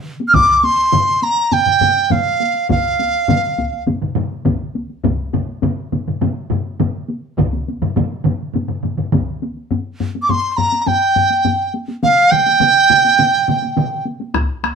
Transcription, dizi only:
0.28 F6
0.35 D6
0.64 C6
1.23 A#5
1.53 G5
2.12 F5
2.71 F5
10.22 D6
10.30 C6
10.52 C6
10.57 A#5
10.82 A#5
10.87 G5
12.03 F5
12.31 G5

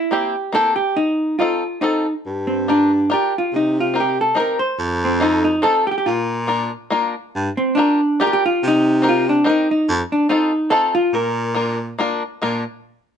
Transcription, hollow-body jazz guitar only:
Already playing: E4
0.12 G4
0.55 A4
0.76 G4
0.96 D#4
1.39 F4
1.81 D#4
2.47 C4
2.70 D4
3.14 G4
3.38 F4
3.56 D#4
3.80 F4
4.00 G4
4.21 A4
4.40 A#4
4.59 C5
5.05 C4
5.22 D#4
5.44 D#4
5.63 A4
5.87 G4
5.91 G4
5.98 G4
6.06 F4
7.57 C4
7.75 D4
8.21 G4
8.27 G4
8.33 G4
8.46 F4
8.68 D#4
9.09 F4
9.29 D4
9.50 D#4
9.71 D#4
10.12 D4
10.30 D#4
10.70 A4
10.95 F4
11.15 A#4

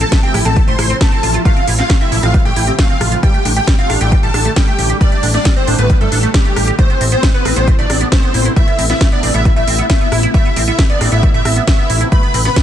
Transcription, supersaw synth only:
0.01 A4 A5
0.23 G4 G5
0.45 A4 A5
0.68 C5 C6
1.01 A4 A5
1.45 F4 F5
1.79 F4 F5
2.01 E4 E5
2.23 F4 F5
2.45 G4 G5
2.79 F4 F5
3.23 G4 G5
3.56 G4 G5
3.79 F4 F5
4.01 G4 G5
4.23 A4 A5
4.56 G4 G5
5.01 D4 D5
5.34 D4 D5
5.56 C4 C5
5.79 B3 B4
6.01 A3 A4
6.34 G3 G4
6.79 C4 C5
7.12 C4 C5
7.34 B3 B4
7.56 C4 C5
7.79 D4 D5
8.12 C4 C5
8.56 E4 E5
8.90 E4 E5
9.12 D4 D5
9.34 E4 E5
9.56 E4 E5
9.90 E4 E5
10.34 E4 E5
10.67 E4 E5
10.90 D4 D5
11.12 E4 E5
11.34 E4 E5
11.67 E4 E5
12.12 B4 B5
12.45 B4 B5

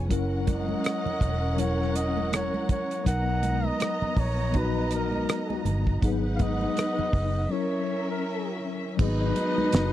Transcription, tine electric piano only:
Already playing: F3 B3 C#4 G#4
0.09 F#3 C#4 E4 A#4
1.56 F#3 C#4 E4
1.60 A#4
3.04 F#3 B3 D#4
3.08 A#4
4.52 F#3 B3 D#4 F#4
6.01 F#3 A#3 D#4 G#4
6.08 B3
7.49 F#3 C#4 E4 A#4
8.97 F#3 A#3 D#4 G#4
9.05 B3

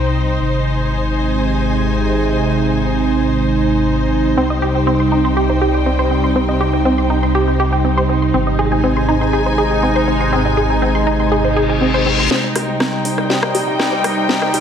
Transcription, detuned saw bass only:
Already playing: C2
0.41 G#1
4.37 C2
8.34 G#1
12.56 C2
13.05 C2
13.55 A#1
14.04 C2
14.54 C2

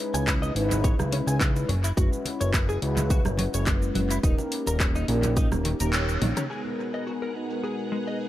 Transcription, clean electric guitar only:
0.14 G#5
0.28 B4
0.42 D#5
0.84 C#5
1.13 C#4
1.27 G#5
1.69 F#3
1.84 E4
1.97 F#4
2.41 C#5
2.54 E4
2.69 G#4
3.11 F#4
3.38 F#3
3.54 C#5
3.95 F#3
4.11 E4
4.24 D#4
4.67 A#4
4.81 C#4
4.96 D#4
5.37 D#4
5.65 D#3
5.80 A#4
6.22 D#3
6.37 C#4
6.50 G#4
6.94 D#5
7.07 F#4
7.22 A#4
7.64 G#4
7.92 G#3
8.07 D#5

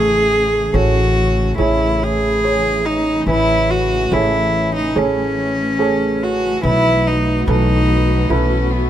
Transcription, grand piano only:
Already playing: A3
0.73 G#4 A4 C#5
1.58 E4 G#4 C#5
2.44 G#4 C#5
3.28 E3
4.12 G#4 A4 C#5
4.96 G#4 A4 C#5
5.79 G#4 A4 C#5
6.63 B3
7.48 E3 A4 B4
8.30 E4 A4 B4

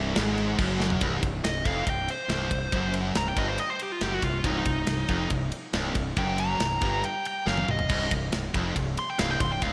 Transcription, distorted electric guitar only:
Already playing: C2
0.17 G#2
0.60 F#2
1.02 C2
1.22 C2
1.44 C2
1.65 F2
1.87 C2
2.29 C2
2.51 C2
2.72 F#2
3.15 C2
3.37 G2
4.01 F#2
4.22 C2
4.44 C2
4.66 C2
4.88 C2
5.08 F2
5.30 C2
5.74 C2
5.95 C2
6.17 F#2
6.61 C2
6.82 G2
7.47 F#2
7.68 C2
7.89 C2
8.11 C2
8.32 C2
8.54 F2
8.76 C2
9.19 C2
9.40 C2
9.62 C#2

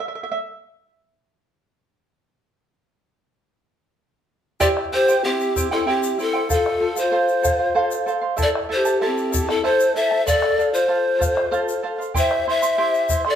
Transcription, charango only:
0.08 E5
0.15 E5
0.23 E5
0.32 E5
4.60 E4 G4 C5 E5 G5
4.92 E4 C5 E5 G5
5.09 E4 C5 G5
5.25 E4 G4 C5 E5 G5
5.56 E4 C5 E5 G5
5.71 E4 C5 G5
5.87 E4 G4 C5 E5 G5
6.18 E4 C5 E5 G5
6.33 E4 C5 G5
6.49 A4 C5 F5
6.80 A4 C5 F5
6.96 C5 F5
7.12 A4 C5 F5
7.42 A4 C5 F5
7.59 C5 F5
7.75 A4 C5 F5
8.06 A4 C5 F5
8.21 C5 F5
8.37 E4 A4 C5 E5 A5
8.69 E4 A4 E5 A5
8.85 E4 A4 A5
9.01 E4 A4 C5 E5 A5
9.32 E4 A4 E5 A5
9.49 E4 A4 A5
9.64 E4 A4 C5 E5 A5
9.95 E4 A4 E5 A5
10.11 E4 A4 A5
10.27 A4 C5 F5
10.58 A4 C5 F5
10.73 C5 F5
10.88 A4 C5 F5
11.19 A4 C5 F5
11.35 C5 F5
11.51 A4 C5 F5
11.83 A4 C5 F5
11.98 C5 F5
12.14 E4 G4 C5 E5 C6
12.47 E4 C5 E5 C6
12.62 E4 E5 C6
12.78 E4 G4 C5 E5 C6
13.10 E4 C5 E5 C6
13.26 E4 E5 C6

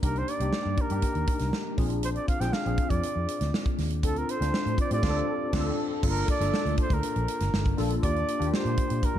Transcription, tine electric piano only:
Already playing: A#3 D4 D#4 G4
0.02 A#3 D4 D#4 G4
0.40 A#3 D4 D#4 G4
0.90 A#3 D4 D#4 G4
1.78 C4 D4 F4 G#4
2.40 C4 D4 F4 G#4
2.66 C4 D4 F4 G#4
4.03 C4 D4 F4 A4
4.40 C4 D4 F4 C5
4.90 C4 D4 F4 G4
4.98 A4
5.02 C4 D4 F4
5.10 A4
5.53 C4 D4 F4
5.60 A4
6.03 A#3 D4 F4 A4
6.40 A#3 D4 F4 A4
7.77 A#3 D4 F4 A4
8.03 A#3 D4 F4 G4
8.39 A#3 D4 F4 G4

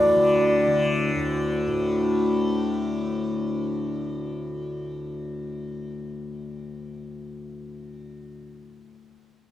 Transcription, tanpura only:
Already playing: D2 A2 D3
0.15 D3
0.66 D3
1.16 D2
1.67 A2

